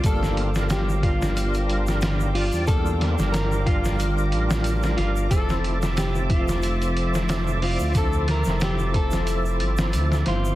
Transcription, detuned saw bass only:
X:1
M:4/4
L:1/16
Q:"Swing 16ths" 1/4=91
K:Gdor
V:1 name="Detuned saw bass" clef=bass
G,,,12- G,,,3 E,,- | E,,3 G,,,6- G,,, A,,,4 G,,,2 | F,,,12- F,,,3 D,,- | D,,3 F,,,6- F,,, G,,,2 D,,2 G,,,2 |]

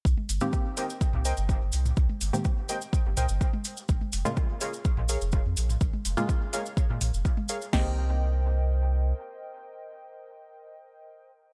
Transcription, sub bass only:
X:1
M:4/4
L:1/16
Q:1/4=125
K:Cphr
V:1 name="Sub bass" clef=bass
C,, z G,,, z6 C,,2 G,,,2 G,,, C,,2 | C,, z G,,, z6 G,,, C,, G,,, z4 | B,,, z F,,, z6 B,,,2 F,,,2 F,, B,,,2 | B,,, z F,,, z6 B,, B,,, F,,, z4 |
C,,12 z4 | z16 |]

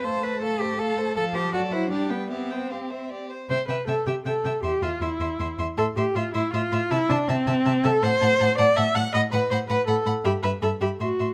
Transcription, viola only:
X:1
M:3/4
L:1/8
Q:1/4=159
K:C
V:1 name="Viola"
A,6 | F,2 ^F,2 G,2 | C4- C z | c B A G A2 |
G F E3 z | A G F E F2 | E D C3 A | [K:Em] c3 d e f |
^d B c B A z | G B A G F2 |]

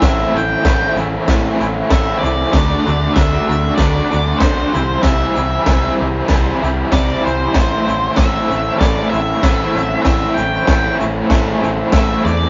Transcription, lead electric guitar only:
X:1
M:4/4
L:1/8
Q:1/4=96
K:Ador
V:1 name="Lead electric guitar"
e g2 z3 e d- | d2 e2 d2 c2 | e3 z3 d c- | c2 e2 d e3 |
e g2 z3 e d |]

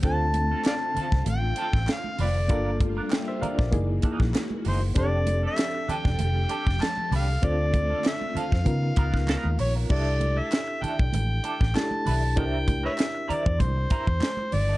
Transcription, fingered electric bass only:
X:1
M:4/4
L:1/16
Q:"Swing 16ths" 1/4=97
K:C
V:1 name="Fingered electric bass" clef=bass
D,,4 z3 C,, A,,,2 z A,,, z2 F,,,2 | G,,,4 z3 _B,,, ^F,,,2 z ^A,,, z2 F,,,2 | F,,,4 z3 E,,, F,,,2 z F,,, z2 C,,2 | D,,4 z3 F,, _D,2 _D,,3 _E,, _B,,,2 |
C,,4 z3 B,,, A,,,2 z A,,, z2 B,,,2 | C,,4 z3 E,, C,,2 z E,, z2 G,,,2 |]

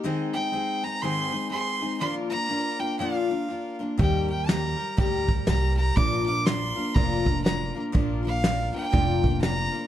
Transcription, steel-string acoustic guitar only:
X:1
M:4/4
L:1/8
Q:"Swing" 1/4=122
K:Bbmix
V:1 name="Steel-string acoustic guitar"
[A,,E,A,CEA] [A,CEA] [A,CEA] [A,CEA] [A,,E,A,CEA] [A,CEA] [A,CEA] [A,CEA] | [B,,F,B,DFB] [B,DFB] [B,DFB] [B,DFB] [B,,F,B,DFB] [B,DFB] [B,DFB] [B,DFB] | [E,G,B,GB] [G,GB] [G,B,GB] [G,GB] [E,G,B,GB] [G,GB] [G,B,GB] [G,GB] | [B,,F,B,DFB] [B,DFB] [B,DFB] [B,DFB] [B,,F,B,DFB] [B,DFB] [B,DFB] [B,DFB] |
[B,,F,B,DFB] [B,DFB] [B,DFB] [B,DFB] [B,,F,B,DFB] [B,DFB] [B,DFB] [B,DFB] |]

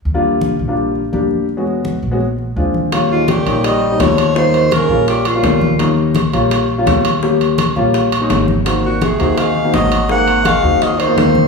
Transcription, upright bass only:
X:1
M:4/4
L:1/8
Q:1/4=167
K:Eb
V:1 name="Upright bass" clef=bass
E,,3 B,,,3 _F,,2- | _F,,3 B,,,3 E,,2- | [K:Ebmix] E,,3 B,,,3 E,,2- | E,,3 B,,,3 E,,2- |
E,,3 B,,,3 E,,2- | E,,3 B,,,3 A,,,2- | A,,,3 E,,3 A,,,2- | A,,,3 E,,3 E,,2 |]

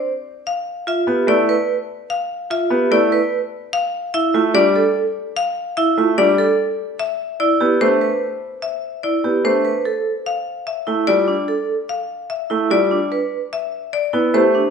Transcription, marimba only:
X:1
M:4/4
L:1/8
Q:1/4=147
K:Gmix
V:1 name="Marimba"
z2 f z e z d z | z2 f z e z d z | z2 f z e z d z | z2 f z e z d z |
z2 e z d z c z | z2 e z d z c z | z2 f z e z d z | z2 f z e z d z |
z2 e z d z c z |]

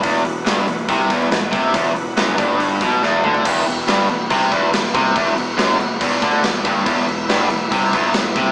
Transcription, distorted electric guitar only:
X:1
M:4/4
L:1/8
Q:1/4=141
K:Em
V:1 name="Distorted electric guitar" clef=bass
E,, E,, G,, E,, C, E,, E,, C, | E,, E,, F,, G,,2 B,, E,, D, | E,, E,, G,, E,, C, E,, E,, C, | E,, E,, F,, E,, E,, D, E,, G,, |
E,, E,, G,, E,, C, E,, E,, C, |]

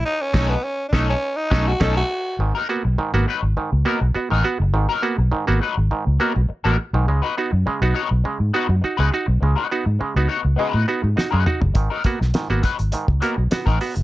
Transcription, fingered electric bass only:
X:1
M:4/4
L:1/16
Q:1/4=102
K:G#dor
V:1 name="Fingered electric bass" clef=bass
z2 B,,,2 z2 B,,,2 z2 B,,,2 B,,,2 z2 | G,,, z2 B,,, z G,,, z G,,, z C,, z B,,, z =A,,, z F,,, | G,,, z2 B,,, z G,,, z G,,, z C,, z B,,, z =A,,, z B,,, | C,, z2 F,, z B,,, z B,,, z G,, z F,, z C,, z B,,, |
C,, z2 G,, z C,, z C,, z =A,, z G,, z F,, z F,,, | G,,, z2 B,,, z G,,, z G,,, z C,, z B,,, z =A,,, z F,,, |]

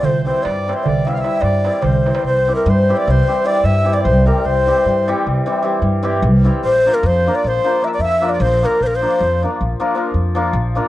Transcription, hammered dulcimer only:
X:1
M:11/8
L:1/8
Q:1/4=152
K:Cmix
V:1 name="Hammered dulcimer"
z [E,G,CE] z [E,G,CE] z [E,G,CE] [E,G,CE] z [E,G,CE] z [E,G,CE] | z [E,G,CEG] z [E,G,CEG] z [E,G,CEG] [E,G,CEG] z [E,G,CEG] z [E,G,CEG] | z [E,G,CEG] z [E,G,CEG] z [E,G,CEG] [E,G,CEG] z [E,G,CEG] z [E,G,CEG] | z [F,B,DFB] z [F,B,DFB] z [F,B,DFB] [F,B,DFB] z [F,B,DFB] z [F,B,DFB] |
z [F,B,DFB] z [F,B,DFB] z [F,B,DFB] [F,B,DFB] z [F,B,DFB] z [F,B,DFB] |]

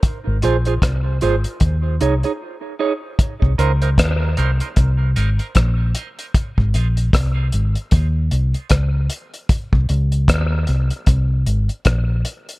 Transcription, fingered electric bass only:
X:1
M:4/4
L:1/16
Q:"Swing 16ths" 1/4=76
K:Cphr
V:1 name="Fingered electric bass" clef=bass
z A,,, B,,,2 C,,2 A,,, z E,,2 C,, z4 z | z C,, D,,2 E,,2 C,, z C,,2 A,,, z B,,,2 z2 | z A,,, B,,,2 C,,2 A,,, z E,,2 C,, z D,,2 z2 | z C,, D,,2 E,,2 C,, z C,,2 A,,, z B,,,2 z2 |]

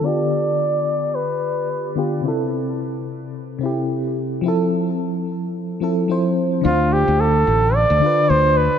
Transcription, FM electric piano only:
X:1
M:4/4
L:1/8
Q:"Swing 16ths" 1/4=109
K:Ddor
V:1 name="FM electric piano"
[D,B,FG]6- [D,B,FG] [D,B,FG] | [C,CEA]4- [C,CEA] [C,CEG]3 | [F,CEA]4- [F,CEA] [F,CEA] [F,CEc]2 | [D,DFc]4- [D,DFc] [D,DFB]3 |]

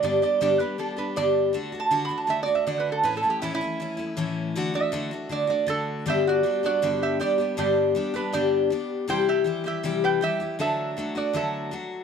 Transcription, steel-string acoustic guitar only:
X:1
M:4/4
L:1/8
Q:1/4=159
K:G
V:1 name="Steel-string acoustic guitar"
[G,,D,G,B,DG] [G,B,DG] [G,,D,G,B,DG] [G,B,DG] [G,B,DG] [G,B,DG] [G,,D,G,B,DG]2 | [D,A,DF] [A,DF] [D,A,DF] [A,DF] [D,A,DF] [A,DF] [D,A,DF]2 | [A,,E,A,^CE] [A,CE] [A,,E,A,CE] [A,CE] [E,A,CE] [A,CE] [A,,E,A,CE]2 | [D,A,DF] [A,DF] [D,A,DF] [A,DF] [D,A,DF] [A,DF] [D,A,DF]2 |
[G,,D,G,B,DG]2 [G,B,DG] [G,B,DG] [G,,D,G,B,DG]2 [G,B,DG] [G,B,DG] | [G,,D,G,B,DG]2 [G,B,DG] [G,B,DG] [G,,D,G,B,DG]2 [G,B,DG]2 | [C,E,G,EG]2 [E,G,EG] [G,EG] [C,E,G,EG]2 [E,G,EG] [G,EG] | [D,F,A,DF]2 [F,A,DF] [A,DF] [D,F,A,DF]2 [F,A,DF]2 |]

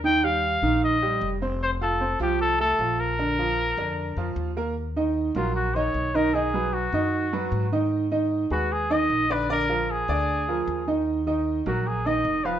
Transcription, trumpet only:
X:1
M:4/4
L:1/8
Q:1/4=152
K:Ebm
V:1 name="Trumpet"
=g f3 e3 z | =c =A2 =G A A2 B- | B6 z2 | z3 F G d2 B |
A2 ^F4- F z | z3 G A e2 c | B2 A4- A z | z3 G A e2 c |]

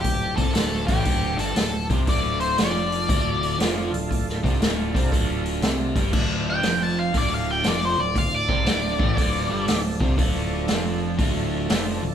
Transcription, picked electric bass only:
X:1
M:4/4
L:1/8
Q:"Swing" 1/4=118
K:Dm
V:1 name="Picked electric bass" clef=bass
D,,, C,, D,,, A,,, D,,, G,,, D,,, C,, | D,,,2 F,,,2 D,,,2 F,,, D,,, | D,,, C,, D,,, C,, D,,,2 C,, G,,, | D,,,2 F,,,2 D,,,2 F,,, D,,, |
D,,, C,, D,,, A,,, D,,, G,,, D,,, C,, | D,,,2 F,,,2 D,,,2 F,,, D,,, |]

